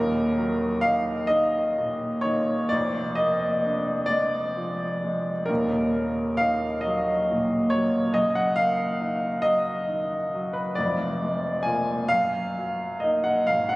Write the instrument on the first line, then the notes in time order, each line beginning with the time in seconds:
grand piano
Already playing: D#1 D#2 A#4
0.37 F#3
0.81 D#4 F5
1.27 D#3 D#5
1.78 A#2
2.21 D#3 C#5
2.69 F1 F2 D5
3.15 A#3 D#5
3.65 D4
4.06 G#3 D5
4.57 F3
5.03 G#3
5.46 D#1 D#2 A#4
5.95 A#3
6.37 D#4 F5
6.81 D#5
6.85 F#3
7.30 A#2
7.70 F#3 C#5
8.13 F#1 F#2 D#5
8.35 F#5
8.56 A#3 F5
9.01 D#4
9.42 F#3 D#5
9.88 D#3
10.34 F#3
10.53 B4
10.75 F1 F2 D5
11.23 G#3
11.63 A#3 F4 G#5
12.08 F#2 F5
12.57 F#3
13.00 A#3 D#5
13.04 D#4
13.24 F#5
13.47 G#1 F5
13.69 F#5